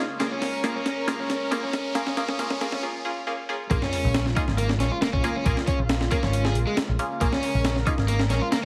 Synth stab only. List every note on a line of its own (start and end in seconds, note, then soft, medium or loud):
0.20 0.26 A#3 medium
0.20 0.26 C#4 medium
0.20 0.26 F4 medium
0.20 0.26 G#4 medium
0.64 0.70 A#3 medium
0.64 0.70 C#4 medium
0.64 0.70 F4 medium
0.64 0.70 G#4 medium
1.07 1.13 A#3 medium
1.07 1.13 C#4 medium
1.07 1.13 F4 medium
1.07 1.13 G#4 medium
1.51 1.57 A#3 medium
1.51 1.57 C#4 medium
1.51 1.57 F4 medium
1.51 1.57 G#4 medium
1.95 2.01 A#3 medium
1.95 2.01 C#4 medium
1.95 2.01 F4 medium
1.95 2.01 G#4 medium
2.17 2.23 A#3 medium
2.17 2.23 C#4 medium
2.17 2.23 F4 medium
2.17 2.23 G#4 medium
2.39 2.45 A#3 medium
2.39 2.45 C#4 medium
2.39 2.45 F4 medium
2.39 2.45 G#4 medium
2.61 2.67 A#3 medium
2.61 2.67 C#4 medium
2.61 2.67 F4 medium
2.61 2.67 G#4 medium
2.83 2.89 A#3 medium
2.83 2.89 C#4 medium
2.83 2.89 F4 medium
2.83 2.89 G#4 medium
3.05 3.11 A#3 medium
3.05 3.11 C#4 medium
3.05 3.11 F4 medium
3.05 3.11 G#4 medium
3.27 3.33 A#3 medium
3.27 3.33 C#4 medium
3.27 3.33 F4 medium
3.27 3.33 G#4 medium
3.49 3.55 A#3 medium
3.49 3.55 C#4 medium
3.49 3.55 F4 medium
3.49 3.55 G#4 medium
3.71 3.77 A#3 medium
3.71 3.77 C#4 medium
3.71 3.76 F4 medium
3.71 3.76 G#4 medium
4.36 4.42 A#3 medium
4.36 4.42 C#4 medium
4.36 4.42 F4 medium
4.36 4.42 G#4 loud
5.24 5.30 A#3 medium
5.24 5.30 C#4 medium
5.24 5.30 F4 medium
5.24 5.30 G#4 medium
5.46 5.52 A#3 medium
5.46 5.52 C#4 medium
5.46 5.52 F4 medium
5.46 5.52 G#4 medium
6.12 6.17 A#3 medium
6.12 6.17 C#4 medium
6.12 6.17 F4 medium
6.12 6.17 G#4 medium
6.99 7.05 A#3 medium
6.99 7.05 C#4 medium
6.99 7.05 F4 medium
6.99 7.05 G#4 medium
7.21 7.27 A#3 medium
7.21 7.27 C#4 medium
7.21 7.27 F4 medium
7.21 7.27 G#4 medium
7.87 7.92 A#3 medium
7.87 7.92 C#4 medium
7.87 7.92 F4 medium
7.87 7.92 G#4 loud